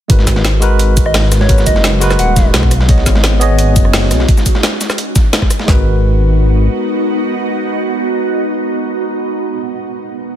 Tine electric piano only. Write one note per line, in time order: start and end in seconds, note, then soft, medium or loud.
0.08 0.59 G#3 medium
0.08 0.60 F#4 medium
0.08 0.60 A#4 medium
0.08 0.61 B4 medium
0.60 1.46 G#3 medium
0.60 1.47 F#4 medium
0.60 1.47 A#4 medium
0.60 1.48 B4 loud
1.48 1.99 G#3 medium
1.48 1.99 F#4 medium
1.48 2.00 A#4 medium
1.48 2.00 B4 medium
2.00 2.70 G#3 loud
2.00 2.70 F#4 medium
2.00 2.71 A#4 medium
2.00 2.71 B4 loud
2.87 3.38 B3 medium
2.87 3.39 G#4 medium
2.87 3.39 C#5 medium
2.87 3.40 D#5 medium
3.40 4.26 B3 loud
3.40 4.26 G#4 medium
3.40 4.27 C#5 medium
3.40 4.27 D#5 loud
5.66 9.51 G#3 medium
5.66 9.52 F#4 medium
5.66 9.54 A#4 medium
5.70 9.55 B4 medium